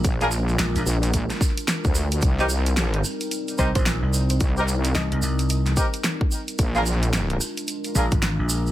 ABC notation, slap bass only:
X:1
M:4/4
L:1/16
Q:"Swing 16ths" 1/4=110
K:Cm
V:1 name="Slap bass" clef=bass
z4 B,,, B,,, z8 z2 | z8 z2 C,, B,,,2 C,,3 | z4 C,, C,, C,,4 z6 | z8 z2 B,,, A,,,2 B,,,3 |]